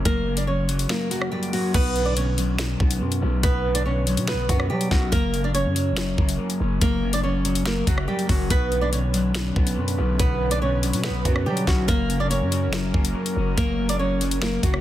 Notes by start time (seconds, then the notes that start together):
Already playing: A#3 C#4
0.05 F#1 F#2 A#3 A#4, kick, closed hi-hat
0.27 C#3
0.37 D4 D5, closed hi-hat
0.47 F#2 C#4 C#5
0.69 F#3, closed hi-hat
0.79 closed hi-hat
0.89 F#2 A#3 A#4, finger snap, snare
1.11 F#3 A#3 F#4, closed hi-hat
1.22 cross-stick
1.31 F#2 G3 G4
1.43 closed hi-hat
1.53 F#3 C#4 F#4, closed hi-hat, open hi-hat
1.74 B1 B2 B3 B4, kick, closed hi-hat, crash
1.95 D3, closed hi-hat
2.06 D4 D5
2.17 B2 C#4 C#5, closed hi-hat
2.37 F#3, closed hi-hat
2.58 B2, finger snap, snare, closed hi-hat
2.80 B1 B3, kick
2.91 closed hi-hat
3.01 F#2 B2
3.12 closed hi-hat
3.21 B1 C#4
3.43 B1 B2 B3 B4, kick, closed hi-hat
3.65 D3
3.75 D4 D5, closed hi-hat
3.86 B2 C#4 C#5
4.07 F#3, closed hi-hat
4.17 B2, closed hi-hat
4.28 B2 B3 B4, finger snap, snare
4.33 B1
4.49 F#2 F#3 B3 F#4, kick, closed hi-hat
4.60 cross-stick
4.70 B2 F#3 G3 G4
4.81 closed hi-hat
4.91 B1 F#3 C#4 F#4, kick, snare
5.12 F#1 F#2 A#3 A#4, kick, closed hi-hat
5.33 C#3, closed hi-hat
5.44 D4 D5
5.54 F#2 C#4 C#5, closed hi-hat
5.65 F#2
5.75 F#3, closed hi-hat
5.92 F#1
5.97 F#2, finger snap, snare, closed hi-hat
6.18 F#1 A#3, kick
6.29 closed hi-hat
6.39 F#2
6.50 closed hi-hat
6.60 F#1 C#4
6.81 F#1 F#2 A#3 A#4, kick, closed hi-hat
7.03 C#3
7.13 D4 D5, closed hi-hat
7.23 F#2 C#4 C#5
7.45 F#3, closed hi-hat
7.55 closed hi-hat
7.66 F#2 A#3 A#4, finger snap, snare
7.87 F#1 F#3 A#3 F#4, kick, closed hi-hat
7.98 cross-stick
8.08 F#2 G3 G4
8.19 closed hi-hat
8.29 F#1 F#3 C#4 F#4, kick, closed hi-hat, open hi-hat
8.50 B1 B2 D3 B3 C#4 B4, kick, closed hi-hat
8.71 D3, closed hi-hat
8.81 D4 D5
8.93 B2 C#4 C#5, closed hi-hat
9.13 F#3, closed hi-hat
9.35 B2, finger snap, snare, closed hi-hat
9.56 B1 B3, kick
9.67 closed hi-hat
9.77 F#2 B2
9.88 closed hi-hat
9.98 B1 C#4
10.19 B1 B2 B3 B4, kick, closed hi-hat
10.41 D3
10.51 D4 D5, closed hi-hat
10.62 B2 C#4 C#5
10.83 F#3, closed hi-hat
10.93 B2, closed hi-hat
11.04 B2 B3 B4, finger snap, snare
11.09 B1
11.25 F#2 F#3 B3 F#4, kick, closed hi-hat
11.36 cross-stick
11.46 B2 F#3 G3 G4
11.57 closed hi-hat
11.67 B1 F#3 C#4 F#4, kick, snare
11.88 F#1 F#2 F#3 A#3 A#4, kick, closed hi-hat
12.09 C#3, closed hi-hat
12.20 D4 D5
12.30 F#2 C#4 C#5, closed hi-hat
12.41 F#2
12.51 F#3, closed hi-hat
12.68 F#1
12.73 F#2, finger snap, snare, closed hi-hat
12.94 F#1 A#3, kick
13.05 closed hi-hat
13.15 F#2
13.26 closed hi-hat
13.36 F#1 C#4
13.57 F#1 F#2 A#3 A#4, kick, closed hi-hat
13.79 C#3
13.89 D4 D5, closed hi-hat
13.99 F#2 C#4 C#5
14.21 F#3, closed hi-hat
14.31 closed hi-hat
14.42 F#2 A#3 A#4, finger snap, snare
14.63 F#1 F#3 A#3 F#4, kick, closed hi-hat
14.74 cross-stick